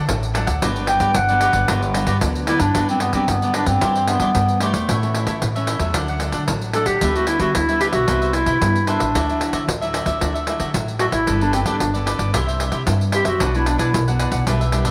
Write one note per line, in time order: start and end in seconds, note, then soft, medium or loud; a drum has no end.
0.09 0.43 A1 loud
0.09 0.60 A2 medium
0.09 0.25 F#3 medium
0.09 0.25 A3 medium
0.09 0.25 D4 medium
0.09 pandeiro medium
0.23 pandeiro soft
0.34 0.51 F#3 medium
0.34 0.51 A3 medium
0.34 0.47 D4 medium
0.34 0.51 D4 medium
0.34 0.47 A4 medium
0.34 0.46 D5 medium
0.34 0.45 F#5 medium
0.34 pandeiro medium
0.46 0.59 D2 medium
0.46 0.61 A4 soft
0.46 0.60 D5 soft
0.46 0.60 F#5 medium
0.46 pandeiro medium
0.62 0.96 G1 medium
0.62 1.13 G2 medium
0.62 0.72 F#3 medium
0.62 0.72 B3 medium
0.62 0.72 D4 medium
0.62 0.86 F#4 medium
0.62 0.87 G4 medium
0.62 0.87 B4 medium
0.62 0.88 D5 medium
0.62 pandeiro medium
0.76 1.25 F#3 medium
0.76 1.25 B3 medium
0.76 1.26 D4 medium
0.76 pandeiro soft
0.87 0.99 F#4 soft
0.87 0.99 G4 medium
0.87 0.99 B4 medium
0.87 1.00 D5 medium
0.87 1.17 G5 medium
0.87 pandeiro medium
1.00 1.12 G2 medium
1.00 1.10 F#4 medium
1.00 1.10 G4 medium
1.00 1.10 B4 medium
1.00 1.11 D5 medium
1.00 pandeiro medium
1.14 1.50 G1 medium
1.14 1.66 D3 medium
1.14 1.69 F#5 medium
1.14 pandeiro medium
1.28 1.65 F#3 medium
1.28 1.65 B3 medium
1.28 1.65 D4 medium
1.28 1.40 G4 soft
1.28 1.41 B4 medium
1.28 1.41 D5 medium
1.28 pandeiro soft
1.41 1.54 F#4 medium
1.41 1.54 G4 medium
1.41 1.53 B4 medium
1.41 1.53 D5 medium
1.41 pandeiro medium
1.53 1.66 G1 medium
1.53 1.68 G4 soft
1.53 1.67 B4 soft
1.53 1.67 D5 medium
1.53 pandeiro medium
1.68 2.03 G1 medium
1.68 2.19 G2 medium
1.68 1.84 F#3 medium
1.68 1.85 B3 medium
1.68 1.85 D4 medium
1.68 1.81 F#4 medium
1.68 1.81 G4 medium
1.68 1.81 B4 medium
1.68 1.81 D5 medium
1.68 pandeiro medium
1.82 1.93 G4 soft
1.82 1.94 B4 soft
1.82 1.94 D5 medium
1.82 pandeiro soft
1.94 2.11 F#3 medium
1.94 2.11 B3 medium
1.94 2.11 D4 medium
1.94 2.05 F#4 medium
1.94 2.06 G4 medium
1.94 2.06 B4 medium
1.94 2.06 D5 medium
1.94 pandeiro medium
2.07 2.19 G2 medium
2.07 2.17 F#4 medium
2.07 2.17 G4 medium
2.07 2.17 B4 medium
2.07 2.17 D5 medium
2.07 pandeiro medium
2.21 2.56 D2 loud
2.21 2.73 D3 medium
2.21 2.45 F#3 medium
2.21 2.45 B3 medium
2.21 2.45 D4 medium
2.21 pandeiro medium
2.35 pandeiro soft
2.47 2.64 F#3 medium
2.47 2.64 B3 medium
2.47 2.65 D4 medium
2.47 2.62 E4 medium
2.47 2.60 F#4 medium
2.47 2.61 G4 medium
2.47 2.60 B4 medium
2.47 2.59 D5 medium
2.47 pandeiro medium
2.60 2.72 G2 medium
2.60 2.88 D4 medium
2.60 2.74 G4 soft
2.60 2.74 B4 soft
2.60 2.73 D5 medium
2.60 pandeiro medium
2.74 3.09 G2 medium
2.74 3.26 G2 medium
2.74 2.84 F#3 medium
2.74 2.84 B3 medium
2.74 2.84 D4 medium
2.74 3.00 F#4 medium
2.74 3.01 G4 medium
2.74 3.01 B4 medium
2.74 3.01 D5 medium
2.74 pandeiro medium
2.89 3.12 F#3 medium
2.89 3.12 B3 medium
2.89 3.00 C4 medium
2.89 3.12 D4 medium
2.89 pandeiro soft
3.00 3.14 B3 medium
3.00 3.12 F#4 soft
3.00 3.13 G4 soft
3.00 3.13 B4 medium
3.00 3.14 D5 medium
3.00 pandeiro medium
3.13 3.37 F#3 medium
3.13 3.26 G3 medium
3.13 3.37 B3 medium
3.13 3.31 C4 medium
3.13 3.37 D4 medium
3.13 3.23 F#4 medium
3.13 3.24 G4 medium
3.13 3.24 B4 medium
3.13 3.24 D5 medium
3.13 pandeiro medium
3.28 3.63 G2 medium
3.28 3.79 D3 medium
3.28 3.54 B3 medium
3.28 pandeiro medium
3.42 3.78 F#3 medium
3.42 3.78 B3 medium
3.42 3.78 D4 medium
3.42 3.54 G4 soft
3.42 3.54 B4 soft
3.42 3.54 D5 soft
3.42 pandeiro soft
3.54 3.69 D4 medium
3.54 3.67 F#4 medium
3.54 3.67 G4 medium
3.54 3.67 B4 medium
3.54 3.66 D5 medium
3.54 pandeiro medium
3.66 3.79 G2 medium
3.66 4.09 C4 medium
3.66 3.81 G4 soft
3.66 3.80 B4 soft
3.66 3.80 D5 soft
3.66 pandeiro medium
3.81 4.32 G2 medium
3.81 4.16 G2 medium
3.81 4.04 E3 medium
3.81 4.04 C4 soft
3.81 4.05 D4 medium
3.81 3.94 E4 medium
3.81 3.94 G4 medium
3.81 3.95 C5 medium
3.81 3.95 D5 medium
3.81 pandeiro medium
3.95 4.08 G4 soft
3.95 4.08 C5 soft
3.95 4.08 D5 soft
3.95 pandeiro soft
4.07 4.30 E3 soft
4.07 4.61 B3 medium
4.07 4.31 C4 medium
4.07 4.31 D4 soft
4.07 4.19 E4 soft
4.07 4.20 G4 soft
4.07 4.20 C5 soft
4.07 4.21 D5 soft
4.07 pandeiro medium
4.20 4.32 G3 medium
4.20 4.30 E4 medium
4.20 4.30 G4 medium
4.20 4.31 C5 medium
4.20 4.31 D5 medium
4.20 pandeiro medium
4.35 4.86 G2 medium
4.35 4.69 G2 medium
4.35 4.58 E3 medium
4.35 4.58 C4 medium
4.35 4.58 D4 medium
4.35 pandeiro medium
4.49 pandeiro soft
4.61 4.77 E3 medium
4.61 5.37 A3 medium
4.61 4.77 C4 soft
4.61 4.77 D4 medium
4.61 4.74 E4 medium
4.61 4.74 G4 medium
4.61 4.73 C5 medium
4.61 4.72 D5 medium
4.61 pandeiro medium
4.74 4.86 E2 medium
4.74 4.88 G4 soft
4.74 4.87 C5 soft
4.74 4.87 D5 medium
4.74 pandeiro medium
4.89 5.23 A2 medium
4.89 5.39 A2 medium
4.89 4.97 E3 medium
4.89 4.97 A3 soft
4.89 4.97 C#4 medium
4.89 5.14 E4 medium
4.89 5.14 A4 medium
4.89 5.15 C#5 medium
4.89 5.15 E5 medium
4.89 pandeiro medium
5.02 5.41 E3 medium
5.02 5.51 A3 medium
5.02 5.52 C#4 medium
5.02 pandeiro soft
5.15 5.26 E4 soft
5.15 5.26 A4 soft
5.15 5.27 C#5 medium
5.15 5.27 E5 soft
5.15 pandeiro medium
5.27 5.39 A3 medium
5.27 5.37 E4 medium
5.27 5.37 A4 medium
5.27 5.37 C#5 medium
5.27 5.37 E5 medium
5.27 pandeiro medium
5.42 5.76 A2 medium
5.42 5.54 E3 medium
5.42 pandeiro medium
5.55 5.78 E3 medium
5.55 5.78 A3 medium
5.55 5.78 C#4 medium
5.55 5.67 A4 soft
5.55 5.68 C#5 soft
5.55 5.68 E5 soft
5.55 pandeiro soft
5.67 5.80 E4 medium
5.67 5.80 A4 medium
5.67 5.79 C#5 medium
5.67 5.78 E5 medium
5.67 pandeiro medium
5.79 5.92 E2 medium
5.79 6.17 F#3 medium
5.79 6.17 A3 medium
5.79 6.17 D4 medium
5.79 5.94 A4 soft
5.79 5.93 C#5 soft
5.79 5.93 E5 soft
5.79 pandeiro medium
5.94 6.29 D2 medium
5.94 6.46 D3 soft
5.94 6.07 D4 medium
5.94 6.08 A4 medium
5.94 6.08 D5 medium
5.94 6.08 F#5 medium
5.94 pandeiro medium
6.08 6.20 A4 soft
6.08 6.21 D5 soft
6.08 6.21 F#5 soft
6.08 pandeiro soft
6.20 6.44 F#3 medium
6.20 6.44 A3 medium
6.20 6.32 D4 soft
6.20 6.44 D4 medium
6.20 6.32 A4 soft
6.20 6.33 D5 soft
6.20 6.33 F#5 soft
6.20 pandeiro medium
6.32 6.45 D3 medium
6.32 6.43 D4 medium
6.32 6.43 A4 medium
6.32 6.43 D5 medium
6.32 6.43 F#5 medium
6.32 pandeiro medium
6.48 6.82 A1 medium
6.48 6.99 A2 medium
6.48 6.71 F#3 medium
6.48 6.71 A3 medium
6.48 6.71 D4 medium
6.48 pandeiro medium
6.61 pandeiro soft
6.73 6.97 F#3 soft
6.73 6.97 A3 medium
6.73 6.86 D4 medium
6.73 6.97 D4 medium
6.73 6.87 A4 medium
6.73 6.88 A4 medium
6.73 6.86 D5 medium
6.73 6.85 F#5 medium
6.73 pandeiro medium
6.86 6.99 D3 medium
6.86 7.17 G4 medium
6.86 7.00 A4 soft
6.86 7.00 D5 soft
6.86 6.99 F#5 medium
6.86 pandeiro medium
7.01 7.36 D2 medium
7.01 7.52 D3 medium
7.01 7.10 G3 medium
7.01 7.11 B3 medium
7.01 7.26 D4 medium
7.01 7.11 E4 medium
7.01 7.26 G4 medium
7.01 7.27 B4 medium
7.01 7.28 E5 medium
7.01 pandeiro medium
7.15 7.38 G3 medium
7.15 7.38 B3 medium
7.15 7.38 E4 medium
7.15 7.27 F#4 medium
7.15 pandeiro soft
7.27 7.38 D4 soft
7.27 7.39 E4 medium
7.27 7.39 G4 medium
7.27 7.39 B4 medium
7.27 7.39 E5 medium
7.27 pandeiro medium
7.39 7.52 D3 medium
7.39 7.63 G3 medium
7.39 7.63 B3 medium
7.39 7.49 D4 medium
7.39 7.63 E4 medium
7.39 7.56 F#4 medium
7.39 7.50 G4 medium
7.39 7.50 B4 medium
7.39 7.50 E5 medium
7.39 pandeiro medium
7.54 7.89 D2 medium
7.54 8.06 D3 medium
7.54 7.80 E4 medium
7.54 pandeiro medium
7.69 8.04 G3 medium
7.69 8.04 B3 medium
7.69 8.05 E4 medium
7.69 7.80 G4 soft
7.69 7.80 B4 soft
7.69 7.81 E5 medium
7.69 pandeiro soft
7.80 7.93 D4 medium
7.80 7.87 G4 medium
7.80 7.93 G4 medium
7.80 7.92 B4 medium
7.80 7.91 E5 medium
7.80 pandeiro medium
7.92 8.05 B1 medium
7.92 8.35 F#4 medium
7.92 8.07 G4 soft
7.92 8.06 B4 soft
7.92 8.06 E5 soft
7.92 pandeiro medium
8.08 8.42 C2 medium
8.08 8.59 C3 soft
8.08 8.57 G3 soft
8.08 8.57 B3 soft
8.08 8.20 E4 medium
8.08 8.58 E4 medium
8.08 8.21 B4 medium
8.08 8.20 C5 medium
8.08 8.20 E5 medium
8.08 pandeiro medium
8.22 8.33 B4 soft
8.22 8.33 C5 soft
8.22 8.34 E5 soft
8.22 pandeiro soft
8.33 8.45 E4 soft
8.33 8.87 E4 medium
8.33 8.46 B4 medium
8.33 8.46 C5 soft
8.33 8.47 E5 medium
8.33 pandeiro medium
8.46 8.59 C3 medium
8.46 8.56 E4 medium
8.46 8.57 B4 medium
8.46 8.56 C5 medium
8.46 8.57 E5 medium
8.46 pandeiro medium
8.61 8.95 G2 medium
8.61 9.12 G2 medium
8.61 8.77 G3 medium
8.61 8.77 B3 medium
8.61 8.78 E4 medium
8.61 pandeiro medium
8.76 pandeiro soft
8.87 9.05 G3 medium
8.87 9.05 B3 soft
8.87 9.63 D4 medium
8.87 9.00 E4 medium
8.87 9.05 E4 medium
8.87 8.99 B4 medium
8.87 9.00 C5 medium
8.87 8.98 E5 medium
8.87 pandeiro medium
8.99 9.12 A1 medium
8.99 9.13 B4 soft
8.99 9.13 C5 soft
8.99 9.12 E5 medium
8.99 pandeiro medium
9.14 9.49 D2 medium
9.14 9.65 D3 medium
9.14 9.23 F#3 soft
9.14 9.23 A3 medium
9.14 9.23 E4 medium
9.14 9.39 F#4 medium
9.14 9.40 A4 medium
9.14 9.40 D5 medium
9.14 9.41 E5 medium
9.14 pandeiro medium
9.29 9.77 F#3 medium
9.29 9.78 A3 medium
9.29 9.78 E4 medium
9.29 pandeiro soft
9.40 9.52 F#4 medium
9.40 9.52 A4 medium
9.40 9.52 D5 medium
9.40 9.53 E5 medium
9.40 pandeiro medium
9.53 9.65 D3 medium
9.53 9.63 F#4 medium
9.53 9.63 A4 medium
9.53 9.63 D5 medium
9.53 9.63 E5 medium
9.53 pandeiro medium
9.68 10.02 D2 medium
9.68 10.19 A2 medium
9.68 pandeiro medium
9.81 10.17 F#3 medium
9.81 10.18 A3 medium
9.81 10.18 E4 medium
9.81 9.93 A4 soft
9.81 9.93 D5 soft
9.81 9.93 E5 medium
9.81 pandeiro soft
9.93 10.06 F#4 medium
9.93 10.06 A4 medium
9.93 10.05 D5 medium
9.93 10.05 E5 medium
9.93 pandeiro medium
10.06 10.18 D2 medium
10.06 10.20 A4 soft
10.06 10.19 D5 soft
10.06 10.19 E5 medium
10.06 pandeiro medium
10.20 10.55 D2 medium
10.20 10.72 D3 soft
10.20 10.37 F#3 medium
10.20 10.37 A3 soft
10.20 10.37 E4 medium
10.20 10.33 F#4 medium
10.20 10.33 A4 medium
10.20 10.34 D5 medium
10.20 10.33 E5 medium
10.20 pandeiro medium
10.34 10.46 A4 soft
10.34 10.47 D5 soft
10.34 10.47 E5 soft
10.34 pandeiro soft
10.47 10.70 F#3 soft
10.47 10.70 A3 soft
10.47 10.70 E4 medium
10.47 10.58 F#4 soft
10.47 10.58 A4 soft
10.47 10.59 D5 soft
10.47 10.59 E5 soft
10.47 pandeiro medium
10.59 10.71 D3 medium
10.59 10.69 F#4 medium
10.59 10.69 A4 medium
10.59 10.69 D5 medium
10.59 10.70 E5 medium
10.59 pandeiro medium
10.74 11.08 A1 medium
10.74 11.25 A2 medium
10.74 10.90 F#3 soft
10.74 10.91 A3 medium
10.74 10.91 E4 medium
10.74 pandeiro medium
10.88 pandeiro soft
10.99 11.16 F#3 medium
10.99 11.17 A3 medium
10.99 11.17 E4 medium
10.99 11.12 F#4 medium
10.99 11.06 F#4 medium
10.99 11.13 A4 medium
10.99 11.12 D5 medium
10.99 11.11 E5 medium
10.99 pandeiro medium
11.12 11.24 A1 medium
11.12 11.44 E4 medium
11.12 11.26 A4 soft
11.12 11.26 D5 soft
11.12 11.25 E5 soft
11.12 pandeiro medium
11.27 11.61 G1 medium
11.27 11.78 G3 medium
11.27 11.37 B3 soft
11.27 11.37 D4 medium
11.27 11.51 G4 medium
11.27 11.52 A4 medium
11.27 11.37 A4 medium
11.27 11.52 B4 medium
11.27 11.53 D5 medium
11.27 pandeiro medium
11.41 11.64 B3 medium
11.41 11.53 D4 medium
11.41 11.64 D4 medium
11.41 11.64 A4 medium
11.41 pandeiro soft
11.52 11.60 C4 medium
11.52 11.65 G4 soft
11.52 11.65 A4 medium
11.52 11.66 B4 medium
11.52 11.66 D5 medium
11.52 pandeiro medium
11.65 11.78 G2 medium
11.65 11.89 B3 medium
11.65 11.92 D4 medium
11.65 11.89 D4 medium
11.65 11.76 G4 medium
11.65 11.76 A4 medium
11.65 11.90 A4 medium
11.65 11.76 B4 medium
11.65 11.76 D5 medium
11.65 pandeiro medium
11.80 12.15 G1 medium
11.80 12.32 D3 medium
11.80 pandeiro medium
11.94 12.30 B3 medium
11.94 12.30 D4 medium
11.94 12.06 A4 soft
11.94 12.31 A4 medium
11.94 12.06 B4 soft
11.94 12.06 D5 medium
11.94 pandeiro soft
12.06 12.19 G4 medium
12.06 12.19 A4 medium
12.06 12.18 B4 medium
12.06 12.17 D5 medium
12.06 pandeiro medium
12.18 12.31 G1 medium
12.18 12.33 A4 soft
12.18 12.32 B4 soft
12.18 12.32 D5 soft
12.18 pandeiro medium
12.34 12.68 C2 medium
12.34 12.85 C3 soft
12.34 12.83 G3 soft
12.34 12.83 C4 soft
12.34 12.46 E4 medium
12.34 12.84 E4 medium
12.34 12.46 G4 medium
12.34 12.46 C5 medium
12.34 12.46 E5 medium
12.34 pandeiro medium
12.47 12.59 G4 soft
12.47 12.59 C5 soft
12.47 12.60 E5 soft
12.47 pandeiro soft
12.60 12.71 E4 soft
12.60 12.71 G4 soft
12.60 12.71 C5 medium
12.60 12.72 E5 medium
12.60 pandeiro medium
12.72 12.84 C3 medium
12.72 12.82 E4 medium
12.72 12.82 G4 medium
12.72 12.82 C5 medium
12.72 12.82 E5 medium
12.72 pandeiro medium
12.87 13.21 G2 medium
12.87 13.38 G2 medium
12.87 13.03 G3 soft
12.87 13.03 C4 medium
12.87 13.04 E4 medium
12.87 pandeiro medium
13.01 pandeiro soft
13.12 13.38 G3 medium
13.12 13.38 C4 soft
13.12 13.25 E4 medium
13.12 13.38 E4 medium
13.12 13.25 G4 medium
13.12 13.26 G4 medium
13.12 13.24 C5 medium
13.12 13.23 E5 medium
13.12 pandeiro medium
13.25 13.37 F#2 medium
13.25 13.57 F#4 medium
13.25 13.39 G4 soft
13.25 13.39 C5 soft
13.25 13.38 E5 soft
13.25 pandeiro medium
13.40 13.75 B1 medium
13.40 13.91 B2 medium
13.40 13.50 F#3 medium
13.40 13.50 B3 medium
13.40 13.65 D4 medium
13.40 13.50 D4 medium
13.40 13.65 B4 medium
13.40 13.66 D5 medium
13.40 13.67 F#5 medium
13.40 pandeiro medium
13.55 14.03 F#3 medium
13.55 14.03 B3 medium
13.55 14.04 D4 medium
13.55 13.68 E4 medium
13.55 pandeiro soft
13.66 13.77 D4 soft
13.66 13.78 D4 medium
13.66 13.78 B4 medium
13.66 13.78 D5 medium
13.66 13.78 F#5 medium
13.66 pandeiro medium
13.78 13.91 B2 medium
13.78 13.88 D4 medium
13.78 14.04 E4 medium
13.78 13.89 B4 medium
13.78 13.89 D5 medium
13.78 13.89 F#5 medium
13.78 pandeiro medium
13.94 14.28 B1 medium
13.94 14.44 F#2 medium
13.94 pandeiro medium
14.08 14.43 F#3 medium
14.08 14.43 B3 medium
14.08 14.44 D4 medium
14.08 14.19 B4 soft
14.08 14.19 D5 soft
14.08 14.20 F#5 soft
14.08 pandeiro soft
14.19 14.32 D4 medium
14.19 14.32 B4 medium
14.19 14.32 D5 medium
14.19 14.31 F#5 medium
14.19 pandeiro medium
14.32 14.44 B1 medium
14.32 14.46 B4 soft
14.32 14.45 D5 soft
14.32 14.45 F#5 soft
14.32 pandeiro medium
14.47 14.81 B1 medium
14.47 14.91 B2 medium
14.47 14.63 G3 medium
14.47 14.59 D4 medium
14.47 14.63 D4 soft
14.47 14.63 E4 soft
14.47 14.60 G4 medium
14.47 14.60 B4 medium
14.47 14.60 E5 medium
14.47 pandeiro medium
14.61 14.72 G4 soft
14.61 14.72 B4 soft
14.61 14.73 E5 soft
14.61 pandeiro soft
14.72 14.89 G3 medium
14.72 14.84 D4 soft
14.72 14.89 D4 medium
14.72 14.89 E4 medium
14.72 14.84 G4 medium
14.72 14.84 B4 medium
14.72 14.85 E5 soft
14.72 pandeiro medium
14.85 14.91 B2 medium
14.85 14.91 D4 medium
14.85 14.91 G4 medium
14.85 14.91 B4 medium
14.85 14.91 E5 medium
14.85 pandeiro medium